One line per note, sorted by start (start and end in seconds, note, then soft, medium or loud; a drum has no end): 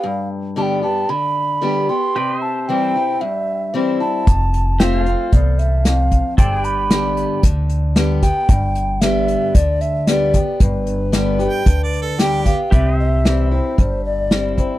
0.00 1.04 G2 medium
0.00 2.12 G4 medium
0.00 2.12 B4 medium
0.00 2.13 D5 medium
0.00 0.29 F5 medium
0.56 0.82 D3 medium
0.56 0.82 G3 medium
0.56 0.82 B3 medium
0.56 0.81 G4 medium
0.56 0.63 A5 medium
0.62 0.82 G5 medium
0.82 1.09 B3 soft
0.82 1.08 G4 medium
0.82 1.11 A5 medium
1.09 1.60 D3 medium
1.09 1.91 B5 loud
1.62 1.88 D3 medium
1.62 1.88 G3 medium
1.62 1.88 B3 medium
1.62 1.88 G4 loud
1.89 2.15 B3 soft
1.89 2.15 G4 medium
1.89 2.44 C6 loud
2.16 3.16 C3 medium
2.16 4.25 G4 medium
2.16 2.36 B4 medium
2.16 2.43 D5 medium
2.36 4.25 C5 medium
2.42 4.26 E5 medium
2.42 2.70 A5 medium
2.68 2.94 E3 medium
2.68 2.94 G3 medium
2.68 2.95 C4 medium
2.68 2.94 E4 medium
2.68 3.22 G5 medium
2.95 3.21 C4 soft
2.95 3.21 E4 medium
3.21 4.22 G2 medium
3.21 3.74 E5 medium
3.74 3.99 E3 medium
3.74 4.00 G3 medium
3.74 4.00 C4 medium
3.74 3.99 E4 medium
4.00 4.27 C4 soft
4.00 4.26 E4 medium
4.00 4.81 A5 medium
4.27 5.13 F1 medium
4.27 kick loud
4.27 closed hi-hat medium
4.54 closed hi-hat medium
4.79 5.05 F3 medium
4.79 5.05 A3 medium
4.79 5.05 C4 medium
4.79 5.05 F4 medium
4.79 5.05 G4 medium
4.79 6.37 C5 medium
4.79 5.02 E5 medium
4.79 4.85 G5 medium
4.79 snare loud
4.79 closed hi-hat medium
4.84 5.35 F5 medium
5.02 6.37 A4 medium
5.02 6.37 F5 medium
5.06 5.32 C4 medium
5.06 5.31 F4 medium
5.06 closed hi-hat medium
5.32 6.18 C2 medium
5.32 5.83 E2 medium
5.32 5.60 D5 medium
5.32 kick loud
5.32 closed hi-hat medium
5.59 5.87 E5 medium
5.59 closed hi-hat medium
5.85 6.36 F2 medium
5.85 6.37 F5 medium
5.85 snare loud
5.85 closed hi-hat medium
6.12 kick medium
6.12 closed hi-hat medium
6.38 7.23 G1 medium
6.38 7.39 G2 medium
6.38 6.63 A4 medium
6.38 6.59 C5 medium
6.38 12.69 D5 medium
6.38 6.66 G5 loud
6.38 kick loud
6.38 closed hi-hat medium
6.59 12.69 B4 medium
6.63 12.68 G4 medium
6.63 7.44 B5 loud
6.63 closed hi-hat medium
6.91 7.41 D3 medium
6.91 7.41 G3 medium
6.91 7.42 B3 medium
6.91 7.42 G4 medium
6.91 snare loud
6.91 closed hi-hat medium
7.17 closed hi-hat medium
7.43 8.29 D2 medium
7.43 7.95 D3 medium
7.43 kick loud
7.43 closed hi-hat medium
7.70 closed hi-hat medium
7.96 8.21 D3 medium
7.96 8.22 G3 medium
7.96 8.22 B3 medium
7.96 8.21 G4 medium
7.96 snare loud
7.96 closed hi-hat medium
8.23 8.49 B3 soft
8.23 8.48 G4 medium
8.23 9.03 G5 loud
8.23 kick medium
8.23 closed hi-hat medium
8.49 9.34 G1 medium
8.49 9.50 G2 medium
8.49 kick loud
8.49 closed hi-hat medium
8.75 closed hi-hat medium
9.01 9.52 D3 medium
9.01 9.52 G3 medium
9.01 9.53 B3 medium
9.01 9.53 G4 loud
9.01 9.56 E5 loud
9.01 snare loud
9.01 closed hi-hat medium
9.28 closed hi-hat medium
9.55 10.40 D2 medium
9.55 10.06 D3 medium
9.55 9.83 D5 medium
9.55 kick loud
9.55 closed hi-hat medium
9.81 10.09 E5 medium
9.81 closed hi-hat medium
10.07 10.33 D3 medium
10.07 10.33 G3 medium
10.07 10.34 B3 medium
10.07 10.33 G4 loud
10.07 10.62 D5 loud
10.07 snare loud
10.07 closed hi-hat medium
10.34 10.60 B3 soft
10.34 10.60 G4 medium
10.34 kick medium
10.34 closed hi-hat medium
10.60 11.46 G1 medium
10.60 11.61 G2 medium
10.60 12.19 B4 medium
10.60 kick loud
10.60 closed hi-hat medium
10.87 closed hi-hat medium
11.12 11.38 D3 medium
11.12 11.39 G3 medium
11.12 11.39 B3 medium
11.12 11.38 G4 medium
11.12 snare loud
11.12 closed hi-hat medium
11.39 11.66 B3 medium
11.39 11.65 G4 medium
11.39 closed hi-hat medium
11.48 11.83 G5 medium
11.66 12.52 D2 medium
11.66 12.17 D3 medium
11.66 kick loud
11.66 closed hi-hat medium
11.84 12.01 D5 medium
11.93 closed hi-hat medium
12.02 12.21 A4 medium
12.19 12.44 D3 medium
12.19 12.45 G3 medium
12.19 12.45 B3 medium
12.19 12.58 G4 medium
12.19 12.44 G4 medium
12.19 12.44 G5 loud
12.19 snare loud
12.19 closed hi-hat medium
12.45 12.72 B3 soft
12.45 12.71 G4 medium
12.45 12.70 F5 medium
12.45 kick medium
12.45 closed hi-hat medium
12.71 13.58 C2 medium
12.71 13.73 C3 medium
12.71 14.79 G4 medium
12.71 12.92 B4 medium
12.71 12.98 D5 medium
12.71 12.97 E5 loud
12.71 kick loud
12.71 closed hi-hat medium
12.92 14.79 C5 medium
12.98 14.79 E5 medium
12.98 13.48 E5 medium
13.25 13.50 E3 medium
13.25 13.51 G3 medium
13.25 13.51 C4 medium
13.25 13.50 E4 medium
13.25 snare loud
13.25 closed hi-hat medium
13.51 13.78 C4 soft
13.51 13.77 E4 soft
13.51 13.77 C5 medium
13.78 14.64 G1 medium
13.78 14.79 G2 medium
13.78 14.03 C5 medium
13.78 kick loud
13.78 closed hi-hat medium
14.05 14.54 D5 medium
14.31 14.56 E3 medium
14.31 14.57 G3 medium
14.31 14.57 C4 medium
14.31 14.56 E4 medium
14.31 snare loud
14.31 closed hi-hat medium
14.57 14.79 C4 soft
14.57 14.79 E4 medium
14.57 14.79 C5 medium
14.57 kick medium
14.57 closed hi-hat medium